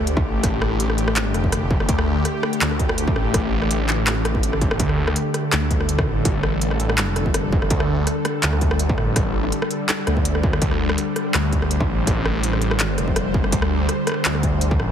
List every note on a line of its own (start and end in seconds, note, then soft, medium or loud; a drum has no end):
0.00 0.24 D2 loud
0.00 14.92 D3 medium
0.00 4.76 A3 medium
0.00 4.78 G4 medium
0.07 closed hi-hat medium
0.17 kick loud
0.17 cross-stick medium
0.25 0.78 A1 loud
0.44 kick loud
0.44 cross-stick medium
0.44 closed hi-hat medium
0.62 cross-stick medium
0.80 1.33 A1 medium
0.80 closed hi-hat medium
0.90 cross-stick soft
0.98 closed hi-hat soft
1.08 cross-stick medium
1.16 clap loud
1.16 closed hi-hat medium
1.34 1.87 F1 medium
1.34 cross-stick soft
1.34 closed hi-hat soft
1.44 kick medium
1.52 cross-stick medium
1.52 closed hi-hat medium
1.71 kick loud
1.80 cross-stick medium
1.89 2.24 D2 loud
1.89 kick loud
1.89 closed hi-hat medium
1.99 cross-stick medium
2.25 cross-stick medium
2.25 closed hi-hat medium
2.43 cross-stick medium
2.53 closed hi-hat soft
2.61 3.15 D2 loud
2.61 clap loud
2.61 closed hi-hat medium
2.71 cross-stick medium
2.79 kick medium
2.79 closed hi-hat soft
2.89 cross-stick medium
2.98 closed hi-hat medium
3.08 kick loud
3.16 3.69 A1 loud
3.16 cross-stick medium
3.34 kick loud
3.34 cross-stick medium
3.34 closed hi-hat medium
3.62 cross-stick medium
3.70 4.78 A1 loud
3.70 closed hi-hat medium
3.89 clap medium
3.89 closed hi-hat soft
4.07 cross-stick medium
4.07 clap loud
4.07 closed hi-hat medium
4.25 cross-stick medium
4.25 closed hi-hat soft
4.35 kick medium
4.43 closed hi-hat medium
4.53 cross-stick medium
4.61 kick loud
4.61 closed hi-hat soft
4.71 cross-stick medium
4.80 5.15 D2 loud
4.80 14.92 G3 medium
4.80 10.59 A4 medium
4.80 kick loud
4.80 closed hi-hat medium
4.89 cross-stick medium
5.08 cross-stick medium
5.16 closed hi-hat medium
5.34 cross-stick medium
5.34 closed hi-hat soft
5.52 6.06 D2 loud
5.52 cross-stick medium
5.52 clap loud
5.52 closed hi-hat medium
5.71 kick medium
5.71 closed hi-hat soft
5.80 cross-stick medium
5.89 closed hi-hat medium
5.99 kick loud
5.99 cross-stick medium
6.07 6.60 A1 loud
6.25 kick loud
6.25 cross-stick medium
6.25 closed hi-hat medium
6.43 cross-stick medium
6.61 7.15 A1 loud
6.61 closed hi-hat medium
6.71 cross-stick medium
6.80 closed hi-hat soft
6.89 cross-stick medium
6.98 clap loud
6.98 closed hi-hat medium
7.16 7.69 F1 medium
7.16 cross-stick medium
7.16 closed hi-hat soft
7.26 kick medium
7.34 cross-stick medium
7.34 closed hi-hat medium
7.53 kick loud
7.62 cross-stick medium
7.70 8.06 D2 medium
7.70 kick loud
7.70 closed hi-hat medium
7.80 cross-stick medium
8.07 cross-stick medium
8.07 closed hi-hat medium
8.25 cross-stick medium
8.25 closed hi-hat soft
8.43 8.96 D2 medium
8.43 clap loud
8.43 closed hi-hat medium
8.53 cross-stick medium
8.61 kick medium
8.61 closed hi-hat soft
8.71 cross-stick medium
8.79 closed hi-hat medium
8.89 kick loud
8.98 9.51 A1 medium
8.98 cross-stick medium
9.16 kick loud
9.16 cross-stick medium
9.16 closed hi-hat medium
9.44 cross-stick soft
9.52 closed hi-hat medium
9.62 cross-stick medium
9.71 closed hi-hat soft
9.89 cross-stick medium
9.89 clap loud
9.89 closed hi-hat medium
10.07 10.60 D2 medium
10.07 cross-stick medium
10.07 closed hi-hat soft
10.17 kick medium
10.25 closed hi-hat medium
10.35 cross-stick soft
10.43 kick loud
10.53 cross-stick medium
10.62 10.97 D2 loud
10.62 14.92 C5 medium
10.62 kick loud
10.62 closed hi-hat medium
10.71 cross-stick medium
10.89 cross-stick medium
10.98 closed hi-hat medium
11.16 cross-stick soft
11.16 closed hi-hat soft
11.34 11.87 D2 loud
11.34 cross-stick medium
11.34 clap loud
11.34 closed hi-hat medium
11.53 kick medium
11.53 closed hi-hat soft
11.62 cross-stick soft
11.71 closed hi-hat medium
11.80 kick loud
11.80 cross-stick medium
11.89 12.42 A1 medium
12.07 kick loud
12.07 cross-stick medium
12.07 closed hi-hat medium
12.25 cross-stick medium
12.43 12.97 A1 loud
12.43 closed hi-hat medium
12.53 cross-stick medium
12.62 closed hi-hat soft
12.71 cross-stick medium
12.80 clap loud
12.80 closed hi-hat medium
12.98 13.51 F1 loud
12.98 cross-stick medium
12.98 closed hi-hat soft
13.08 kick medium
13.16 cross-stick medium
13.16 closed hi-hat medium
13.34 kick loud
13.44 cross-stick medium
13.52 13.87 D2 loud
13.52 kick loud
13.52 closed hi-hat medium
13.62 cross-stick medium
13.89 cross-stick medium
13.89 closed hi-hat medium
14.07 cross-stick medium
14.07 closed hi-hat soft
14.09 cross-stick medium
14.12 cross-stick medium
14.14 cross-stick soft
14.25 14.78 D2 loud
14.25 clap loud
14.25 closed hi-hat medium
14.35 cross-stick medium
14.43 kick medium
14.43 closed hi-hat soft
14.61 closed hi-hat medium
14.71 kick loud
14.80 14.92 A1 medium
14.80 cross-stick medium